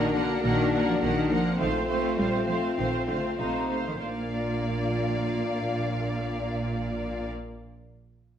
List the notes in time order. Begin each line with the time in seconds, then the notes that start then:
Already playing: A#1 D#3 A#3 D4 F#4 A#4 F#5
0.15 D3 A#3 A#4 F#5
0.43 A#1 D#3 A#3 A#4 F#5
0.73 A#3 A#4 F#5
0.87 F3
1.00 A#1 D#3 A#3 A#4 F#5
1.30 F3 A#3 A#4 F#5
1.58 A#1 D#3 A3 C4 F4 C5 F5
1.88 A3 C5 F5
2.17 A#1 G3 A3 C5 F5
2.46 F3 A3 C5 F5
2.77 A#1 D#3 A3 C5 F5
3.07 D3 A3 C5 F5
3.38 A#1 C3 A3 D#4 C5 F5
3.70 A3 C5 F5
3.87 D#3
4.01 A#1 A#2 A#3 D4 F4 D5 F5